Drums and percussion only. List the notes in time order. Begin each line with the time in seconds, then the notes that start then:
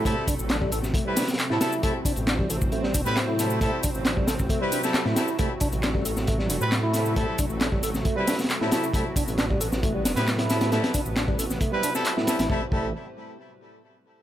0.05 kick, closed hi-hat, shaker
0.27 kick, closed hi-hat, open hi-hat, shaker
0.39 shaker
0.50 snare, clap, closed hi-hat, shaker
0.62 kick
0.72 closed hi-hat, open hi-hat, shaker
0.83 snare, shaker
0.94 kick, closed hi-hat, shaker
1.16 snare, closed hi-hat, open hi-hat, shaker
1.22 snare, closed hi-hat
1.27 snare, closed hi-hat, shaker
1.33 snare, closed hi-hat
1.39 clap, closed hi-hat, shaker
1.50 snare
1.61 snare, closed hi-hat, open hi-hat, shaker
1.72 shaker
1.83 kick, closed hi-hat, shaker
2.05 kick, closed hi-hat, open hi-hat, shaker
2.16 closed hi-hat, shaker
2.27 snare, clap, closed hi-hat, shaker
2.39 kick
2.50 closed hi-hat, open hi-hat, shaker
2.61 kick, shaker
2.72 closed hi-hat, shaker
2.84 snare
2.94 kick, closed hi-hat, open hi-hat, shaker
3.06 snare, shaker
3.16 snare, clap, closed hi-hat, shaker
3.39 snare, closed hi-hat, open hi-hat, shaker
3.50 shaker
3.61 kick, closed hi-hat, shaker
3.83 kick, closed hi-hat, open hi-hat, shaker
3.95 shaker
4.05 snare, clap, closed hi-hat, shaker
4.17 kick
4.27 snare, closed hi-hat, open hi-hat, shaker
4.39 kick, shaker
4.49 kick, closed hi-hat, shaker
4.72 closed hi-hat, open hi-hat, shaker
4.83 snare, shaker
4.94 snare, clap, closed hi-hat, shaker
5.05 snare
5.16 snare, closed hi-hat, open hi-hat, shaker
5.28 shaker
5.39 kick, closed hi-hat, shaker
5.60 kick, closed hi-hat, open hi-hat, shaker
5.72 closed hi-hat, shaker
5.83 snare, clap, closed hi-hat, shaker
5.95 kick
6.05 closed hi-hat, open hi-hat, shaker
6.17 snare, shaker
6.27 kick, closed hi-hat, shaker
6.39 snare
6.50 closed hi-hat, open hi-hat, shaker
6.61 shaker
6.72 snare, clap, closed hi-hat, shaker
6.93 snare, closed hi-hat, open hi-hat, shaker
7.05 shaker
7.16 kick, closed hi-hat, shaker
7.38 kick, closed hi-hat, open hi-hat, shaker
7.50 shaker
7.61 snare, clap, closed hi-hat, shaker
7.72 kick
7.83 closed hi-hat, open hi-hat, shaker
7.94 snare, shaker
8.05 kick, closed hi-hat, shaker
8.27 snare, closed hi-hat, open hi-hat, shaker
8.33 snare, closed hi-hat
8.39 snare, closed hi-hat, shaker
8.44 snare, closed hi-hat
8.50 clap, closed hi-hat, shaker
8.61 snare
8.71 snare, closed hi-hat, open hi-hat, shaker
8.83 shaker
8.94 kick, closed hi-hat, shaker
9.16 kick, closed hi-hat, open hi-hat, shaker
9.28 closed hi-hat, shaker
9.38 snare, clap, closed hi-hat, shaker
9.51 kick
9.61 closed hi-hat, open hi-hat, shaker
9.72 snare, shaker
9.83 kick, closed hi-hat, shaker
10.05 snare, closed hi-hat, open hi-hat, shaker
10.16 snare, closed hi-hat, shaker
10.27 snare, clap, closed hi-hat, shaker
10.38 snare, closed hi-hat
10.50 snare, closed hi-hat, open hi-hat, shaker
10.61 snare, closed hi-hat, shaker
10.72 snare, closed hi-hat, shaker
10.84 snare, closed hi-hat
10.94 kick, closed hi-hat, open hi-hat, shaker
11.06 shaker
11.16 snare, clap, closed hi-hat, shaker
11.28 kick
11.39 closed hi-hat, open hi-hat, shaker
11.50 snare, shaker
11.61 kick, closed hi-hat, shaker
11.83 closed hi-hat, open hi-hat, shaker
11.95 snare, shaker
12.05 clap, closed hi-hat, shaker
12.17 snare
12.27 snare, closed hi-hat, open hi-hat, shaker
12.39 snare, closed hi-hat, shaker
12.50 kick
12.72 kick